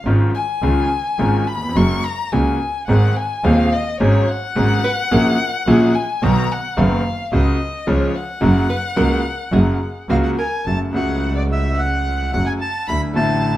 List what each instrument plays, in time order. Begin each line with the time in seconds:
0.05 double bass G#1, grand piano G#1 G#2 D#3 G#3 C#4 F4
0.34 violin G#5
0.62 double bass C#2, grand piano C#2 C#3 D#3 G#3 C#4 F4
1.19 double bass G#1, grand piano G#1 G#2 D#3 G#3 C#4 F4
1.47 violin B5
1.55 grand piano D#2
1.62 grand piano E2
1.69 grand piano F2
1.76 double bass F#1, grand piano F#2 C#3 F#3 G#3 A#3 F#4, violin C#6
2.04 violin A#5
2.32 double bass C#2, grand piano C#2 C#3 G#3 A#3 F#4, violin G#5
2.87 double bass G#1, grand piano G#1 G#2 D#3 G#3 C4 G#4, violin F#5
3.17 violin G#5
3.44 grand piano D#1 D#2 D#3 G#3 C4 G#4, double bass D#2, violin F5
3.72 violin D#5
4.00 grand piano G#1 G#2 F#3 G#3 C#4 G#4, double bass G#1, violin C#5
4.28 violin F#5
4.56 grand piano G#1 G#2 F#3 G#3 C#4 G#4, double bass G#1
4.84 hollow-body jazz guitar B4
5.11 grand piano A#1 A#2 F#3 A#3 C#4 G#4, double bass A#1, hollow-body jazz guitar A#4
5.67 double bass A#1, grand piano A#1 A#2 F#3 A#3 C#4 G#4
5.95 violin G#5
6.22 double bass B1, grand piano B1 B2 D#3 F#3 B3 F#4, violin A#5
6.52 violin F#5
6.77 double bass F#1, grand piano F#1 F#2 D#3 F#3 B3 F#4, violin F5
7.32 double bass C#2, grand piano C#2 C#3 F#3 G#3 F#4, violin D#5
7.87 grand piano C#2 C#3 F3 G#3 F4, double bass C#2, violin C#5
8.15 violin F#5
8.41 double bass F#1, grand piano F#2 C#3 F#3 A#3 F#4
8.70 hollow-body jazz guitar B4
8.96 grand piano C#2 C#3 F#3 A#3 F#4, double bass C#2, hollow-body jazz guitar A#4
9.52 double bass F#1, grand piano F#2 C#3 F#3 A#3 F#4, hollow-body jazz guitar G#4
10.09 double bass C#2, grand piano C#2 C#3 F#3 A#3 F#4, hollow-body jazz guitar F#4, violin F5, bandoneon F5
10.23 violin F#5, bandoneon F#5
10.37 hollow-body jazz guitar A#4, violin G#5, bandoneon G#5
10.64 double bass F#1, grand piano F#2 C#3 F#3 A3 F#4, violin A5, bandoneon A5
10.93 double bass C#2, grand piano C#2 C#3 F#3 A3, violin F#5, bandoneon F#5
10.97 grand piano F#4
11.35 violin D5, bandoneon D5
11.49 violin E5, bandoneon E5
11.77 violin F#5, bandoneon F#5
12.32 double bass F#1, grand piano F#2 C#3 F#3 A3 F#4, violin F#5, bandoneon F#5
12.46 violin G#5, bandoneon G#5
12.59 violin A5, bandoneon A5
12.88 double bass D2, grand piano D2 D3 F#3 A3 E4, violin B5, bandoneon B5
13.14 grand piano A1 A2 D3 F#3 A3, double bass A1, violin A5, bandoneon A5
13.18 grand piano E4